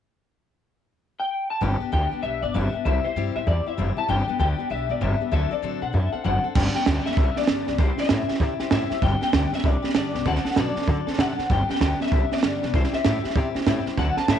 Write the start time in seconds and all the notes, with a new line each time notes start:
1.20 G5
1.50 A5
1.61 G1 G3 B3 D4 G4 G5
1.80 B3 D4 G4, muted upright bass stroke
1.92 D2 G3 B3 D4 G4 G5
2.11 B3 D4 G4, muted upright bass stroke
2.22 B1 G3 B3 D4 G4 E5
2.42 G1 B3 D4 G4 D5
2.54 G1 G3 B3 D4 G4 E5
2.73 B3 D4 G4, muted upright bass stroke
2.85 C2 C3 G3 C4 E4 G4 E5
3.04 C4 E4 G4 C5, muted upright bass stroke
3.16 G2 C3 G3 C4 E4 G4
3.36 C4 E4 G4 E5
3.47 E2 G3 C4 E4 G4 D5
3.66 C4 E4 G4 E5, muted upright bass stroke
3.77 F#1 C3 G3 C4 E4 G4
3.97 C4 E4 G4 A5, muted upright bass stroke
4.08 G1 G2 D3 G3 B3 D4 G4 G5
4.27 G3 B3 D4 G4, muted upright bass stroke
4.39 D2 G2 D3 G3 B3 D4 G4 G5
4.58 G3 B3 D4 G4, muted upright bass stroke
4.70 B1 G3 B3 D4 G4 E5
4.89 G1 G3 B3 D4 G4 D5
5.01 G1 G2 D3 G3 B3 D4 G4 E5
5.20 G3 B3 D4 G4, muted upright bass stroke
5.31 D2 D3 F#3 C4 D4 A4 E5
5.51 C4 D4 A4 D5, muted upright bass stroke
5.62 A2 D3 F#3 C4 D4 A4
5.81 B2 C4 D4 A4 F#5
5.93 F#2 F#3 C4 D4 A4 E5
6.12 C4 D4 A4 F#5, muted upright bass stroke
6.24 F#1 D3 F#3 C4 D4 A4 F#5
6.44 C4 D4 A4, muted upright bass stroke
6.55 G1 G2 D3 G3 B3 D4 G4 G5, kick, snare, crash
6.65 snare
6.74 G3 B3 D4 G4 G5, muted upright bass stroke, snare
6.86 D2 G2 D3 G3 B3 D4 G4, snare, hi-hat pedal
6.96 G5
7.06 G3 B3 D4 G4 E5, snare
7.11 snare
7.17 C2 G3 B3 D4 G4, kick, snare
7.36 G3 B3 D4 G4 D5, muted upright bass stroke, snare
7.42 snare
7.47 G1 G2 D3 G3 B3 D4 G4, snare, hi-hat pedal
7.67 B1 G3 B3 D4 G4, snare
7.78 C2 C3 G3 C4 E4 G4 C5, kick, snare
7.98 C4 E4 G4 E5, muted upright bass stroke, snare
8.04 snare
8.09 A2 C3 G3 C4 E4 G4, snare, hi-hat pedal
8.28 C4 E4 G4, muted upright bass stroke, snare
8.34 snare
8.39 C3 G3 C4 E4 G4, kick, snare
8.59 C4 E4 G4, muted upright bass stroke, snare
8.71 A2 C3 G3 C4 E4 G4 E5, snare, hi-hat pedal
8.90 C4 E4 G4, muted upright bass stroke, snare
9.02 G1 G2 D3 G3 B3 D4 G4 G5, kick, snare
9.21 G3 B3 D4 G4 G5, muted upright bass stroke, snare
9.32 D2 G2 D3 G3 B3 D4 G4, snare, hi-hat pedal
9.51 G3 B3 D4 G4 E5, muted upright bass stroke, snare
9.58 snare
9.63 C2 G3 B3 D4 G4 D5, kick, snare
9.82 G3 B3 D4 G4, muted upright bass stroke, snare
9.89 snare
9.94 G1 G2 D3 G3 B3 D4 G4 D5, snare, hi-hat pedal
10.13 C2 G3 B3 D4 G4, snare
10.25 D2 D3 F#3 C4 D4 A4 F#5, kick, snare
10.35 snare
10.44 C4 D4 A4, muted upright bass stroke, snare
10.51 snare
10.56 B2 D3 F#3 C4 D4 A4 D5, snare, hi-hat pedal
10.76 C4 D4 A4, muted upright bass stroke, snare
10.82 snare
10.87 D3 F#3 C4 D4 A4, kick, snare
11.07 C4 D4 A4, muted upright bass stroke, snare
11.13 snare
11.18 C3 D3 F#3 C4 D4 A4 F#5, snare, hi-hat pedal
11.38 C4 D4 A4, muted upright bass stroke, snare
11.50 G1 G2 D3 G3 B3 D4 G4 G5, kick, snare
11.69 G3 B3 D4 G4 G5, muted upright bass stroke, snare
11.75 snare
11.80 D2 G2 D3 G3 B3 D4 G4, snare, hi-hat pedal
12.00 G3 B3 D4 G4 E5, muted upright bass stroke, snare
12.06 snare
12.12 C2 G3 B3 D4 G4, kick, snare
12.31 G3 B3 D4 G4 D5, muted upright bass stroke, snare
12.37 snare
12.43 G1 G2 D3 G3 B3 D4 G4, snare, hi-hat pedal
12.62 B1 G3 B3 D4 G4, snare
12.73 C2 C3 G3 C4 E4 G4 C5, kick, snare
12.84 snare
12.92 C4 E4 G4 E5, muted upright bass stroke, snare
13.04 A2 C3 G3 C4 E4 G4, snare, hi-hat pedal
13.23 C4 E4 G4, muted upright bass stroke, snare
13.30 snare
13.35 C3 G3 C4 E4 G4, kick, snare
13.54 C4 E4 G4, muted upright bass stroke, snare
13.61 snare
13.66 A2 C3 G3 C4 E4 G4, snare, hi-hat pedal
13.86 C4 E4 G4, muted upright bass stroke, snare
13.97 D2 D3 F#3 C4 D4 A4 F#5, kick, snare
14.17 C4 D4 A4 A5, muted upright bass stroke, snare
14.28 A2 D3 F#3 C4 D4 A4 E5, snare, hi-hat pedal